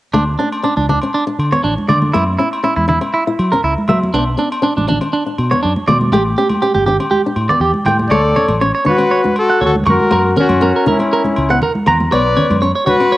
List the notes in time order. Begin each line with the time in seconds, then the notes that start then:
0.13 D2 A3 D4, low agogo
0.39 C#4 D4
0.52 low agogo
0.63 C#4 D4
0.77 C#2 D4, high conga
0.89 D4, low conga
1.02 C#4, low agogo
1.14 D4
1.27 D4
1.39 D3, low agogo
1.52 B3 C#5, low conga
1.64 A1 D4
1.78 high conga
1.88 D3 A3 D5, low conga, low agogo
2.02 high conga
2.14 F#2 A#3 E4, low agogo
2.39 C#4 E4
2.53 low agogo
2.64 C#4 E4
2.76 E2 E4, high conga
2.88 D4 E4, low conga
3.01 C#4, low agogo
3.14 E4
3.27 E4
3.39 F#3, low agogo
3.52 C#4 A#4, low conga
3.64 C#2 E4
3.78 high conga
3.88 F#3 A#3 E5, low conga, low agogo
4.03 high conga
4.13 B1 B3 D4, low agogo
4.38 C#4 D4
4.52 low agogo
4.62 C#4 D4
4.77 A1 D4, high conga
4.88 C#4 D4, low conga
5.01 C#4, low agogo
5.13 D4
5.26 D4
5.38 B2, low agogo
5.51 B3 C#5, low conga
5.63 F#2 D4
5.76 high conga
5.87 B2 A3 D5, low conga, low agogo
6.01 high conga
6.12 A1 A3 G4, low agogo
6.38 C#4 G4
6.49 high conga, low agogo
6.62 C#4 G4
6.75 G1 G4, high conga
6.86 D4 G4, low conga
7.00 C#4, low agogo
7.11 G4, high conga
7.26 D4
7.36 A2, low agogo
7.49 B3 D5, low conga
7.60 E2 G4
7.74 high conga
7.85 A2 A3 G5, low conga, low agogo
7.99 high conga
8.09 D2 A3 A4 C#5 D5, low agogo
8.36 C#4 C#5, low conga
8.48 A1, high conga, low agogo
8.61 C#4 C#5
8.75 C#5
8.85 D4 B4 C#5, high conga, low conga
8.90 F#4
8.98 C#4, low agogo
9.11 C#5
9.24 D4, high conga
9.36 A4, low agogo
9.40 F#4
9.50 F#5
9.61 D2 F#4 C#5, low conga
9.65 A4
9.76 high conga
9.86 F#2 A3 C#6, low conga, low agogo
9.90 F#4 A#4
10.00 high conga
10.11 F#2 A#3 A#4, low agogo
10.37 C#4 F#4 A#4, low conga
10.49 F#2, high conga, low agogo
10.61 C#4 A#4
10.76 A#4
10.86 C#4 D4 E4 A#4, high conga, low conga
10.99 C#4, low agogo
11.13 A#4
11.24 D4, high conga
11.36 C#2, low agogo
11.50 B3 F#5
11.62 A#4, low conga
11.75 high conga
11.86 E2 A#3 A#5, low conga, low agogo
12.00 high conga
12.12 B1 B3 B4 C#5 D5, low agogo
12.37 C#4 C#5, low conga
12.50 F#2, high conga, low agogo
12.62 C#4 C#5
12.75 C#5
12.86 D4 F#4 B4 C#5, high conga, low conga
13.00 C#4, low agogo
13.12 C#5